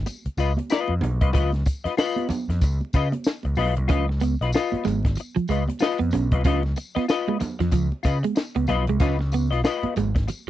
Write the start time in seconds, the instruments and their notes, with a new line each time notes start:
0.06 muted clean electric guitar stroke, closed hi-hat, tambourine, muted conga
0.26 muted picked electric bass stroke, closed hi-hat
0.37 picked electric bass C#2, clean electric guitar F4 B4 D#5, closed hi-hat, tambourine
0.57 muted clean electric guitar stroke, closed hi-hat, high conga
0.70 clean electric guitar F4 B4 D#5, snare, tambourine
0.88 picked electric bass F2, muted conga
1.01 picked electric bass B1, muted clean electric guitar stroke, closed hi-hat, high conga, low conga
1.21 picked electric bass C2, clean electric guitar F4 B4 D#5, kick, closed hi-hat
1.33 picked electric bass C#2, clean electric guitar F4 B4 D#5, kick, closed hi-hat, tambourine, muted conga, low conga
1.52 snare, closed hi-hat, muted conga
1.66 muted clean electric guitar stroke, kick, closed hi-hat, tambourine
1.84 clean electric guitar F4 B4 D#5, muted picked electric bass stroke, snare, closed hi-hat
1.97 clean electric guitar F4 B4 D#5, snare, tambourine, muted conga
2.16 closed hi-hat, high conga
2.29 muted clean electric guitar stroke, muted picked electric bass stroke, closed hi-hat, tambourine, high conga, low conga
2.49 picked electric bass F2, muted clean electric guitar stroke, snare, closed hi-hat
2.61 picked electric bass C#2, muted clean electric guitar stroke, kick, closed hi-hat, tambourine, muted conga
2.81 muted conga
2.93 picked electric bass C#3, clean electric guitar F4 B4 D#5, kick, closed hi-hat, tambourine
3.12 muted clean electric guitar stroke, closed hi-hat, high conga
3.24 muted clean electric guitar stroke, snare, tambourine
3.43 picked electric bass C#2, muted clean electric guitar stroke, closed hi-hat, muted conga
3.55 picked electric bass B1, clean electric guitar F4 B4 D#5, open hi-hat, tambourine, high conga, low conga
3.77 picked electric bass C2, muted clean electric guitar stroke, closed hi-hat
3.88 picked electric bass C#2, clean electric guitar C#4 F4 B4 D#5, kick, closed hi-hat, tambourine, muted conga, low conga
4.09 muted clean electric guitar stroke, snare
4.20 clean electric guitar B3, muted clean electric guitar stroke, closed hi-hat, tambourine
4.41 picked electric bass B1, clean electric guitar F4 B4 D#5, snare, closed hi-hat
4.52 clean electric guitar F4 B4 D#5, snare, tambourine
4.72 muted picked electric bass stroke, closed hi-hat, muted conga, high conga
4.85 picked electric bass G#1, clean electric guitar G#3, muted clean electric guitar stroke, closed hi-hat, tambourine, high conga, low conga
5.05 muted clean electric guitar stroke, kick, snare, closed hi-hat
5.15 closed hi-hat, tambourine
5.20 muted clean electric guitar stroke
5.36 clean electric guitar F3, muted picked electric bass stroke, closed hi-hat
5.48 picked electric bass C#2, clean electric guitar G#3 F4 B4 D#5, closed hi-hat, tambourine
5.68 muted clean electric guitar stroke, closed hi-hat, high conga
5.79 clean electric guitar F4 B4 D#5, muted clean electric guitar stroke, snare, tambourine, muted conga
5.99 picked electric bass F2, clean electric guitar B3, closed hi-hat, muted conga
6.11 picked electric bass B1, clean electric guitar C#4, muted clean electric guitar stroke, closed hi-hat, tambourine, high conga, low conga
6.31 picked electric bass C2, clean electric guitar F4 B4 D#5, kick, closed hi-hat
6.44 picked electric bass C#2, clean electric guitar C#4 F4 B4 D#5, kick, closed hi-hat, tambourine, muted conga, low conga
6.63 snare, muted conga
6.76 muted clean electric guitar stroke, closed hi-hat, tambourine
6.95 clean electric guitar B3 F4 B4 D#5, muted picked electric bass stroke, snare, closed hi-hat
7.08 clean electric guitar F4 B4 D#5, snare, tambourine
7.28 clean electric guitar G#3, high conga
7.39 muted clean electric guitar stroke, muted picked electric bass stroke, closed hi-hat, tambourine, high conga, low conga
7.59 picked electric bass F2, clean electric guitar F3, muted clean electric guitar stroke, snare, closed hi-hat
7.71 picked electric bass C#2, clean electric guitar F3, muted clean electric guitar stroke, kick, closed hi-hat, tambourine
7.92 muted conga
8.03 picked electric bass C#3, clean electric guitar F4 B4 D#5, muted clean electric guitar stroke, kick, closed hi-hat, tambourine
8.23 clean electric guitar G#3, muted clean electric guitar stroke, closed hi-hat, high conga
8.35 muted clean electric guitar stroke, snare, tambourine
8.55 picked electric bass C#2, clean electric guitar B3, muted clean electric guitar stroke, closed hi-hat, muted conga
8.67 picked electric bass B1, clean electric guitar F4 B4 D#5, muted clean electric guitar stroke, closed hi-hat, tambourine, high conga, low conga
8.87 picked electric bass C2, clean electric guitar G#3, closed hi-hat
9.00 picked electric bass C#2, clean electric guitar C#4 F4 B4 D#5, kick, closed hi-hat, tambourine, low conga
9.19 muted clean electric guitar stroke, snare, muted conga
9.32 clean electric guitar B3, muted clean electric guitar stroke, closed hi-hat, tambourine
9.51 picked electric bass B1, clean electric guitar F4 B4 D#5, snare, closed hi-hat
9.64 clean electric guitar F4 B4 D#5, snare, tambourine, muted conga
9.83 muted picked electric bass stroke, closed hi-hat, muted conga, high conga
9.96 picked electric bass G#1, clean electric guitar G#3, muted clean electric guitar stroke, closed hi-hat, tambourine, high conga, low conga
10.15 muted clean electric guitar stroke, kick, snare, closed hi-hat
10.27 muted clean electric guitar stroke, closed hi-hat, tambourine, muted conga